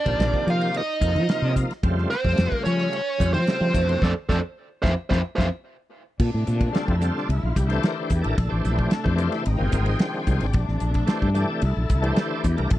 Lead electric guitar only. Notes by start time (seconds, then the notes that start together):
Already playing: D5
0.50 F5
0.77 D#5
2.10 C5
2.64 C#5
3.33 C5
4.03 A4 C5 D5
4.29 A4 C5 D5
4.82 C5 E5 F5
5.10 C5 E5 F5
5.36 C5 E5 F5